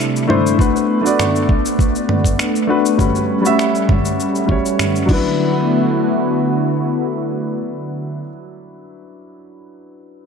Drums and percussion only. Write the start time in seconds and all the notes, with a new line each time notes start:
0.00 finger snap, shaker
0.16 shaker
0.30 mid tom
0.47 shaker
0.59 kick, shaker
0.76 shaker
1.06 shaker
1.19 finger snap, mid tom, shaker
1.36 shaker
1.49 kick
1.66 shaker
1.79 kick, shaker
1.96 shaker
2.09 mid tom
2.24 kick, shaker
2.39 finger snap, shaker
2.56 shaker
2.86 shaker
2.99 kick, mid tom, shaker
3.15 shaker
3.46 shaker
3.59 finger snap, shaker
3.75 shaker
3.89 kick, mid tom
4.05 shaker
4.20 shaker
4.35 shaker
4.49 kick
4.66 shaker
4.79 finger snap, mid tom, shaker
4.96 shaker
5.09 kick, crash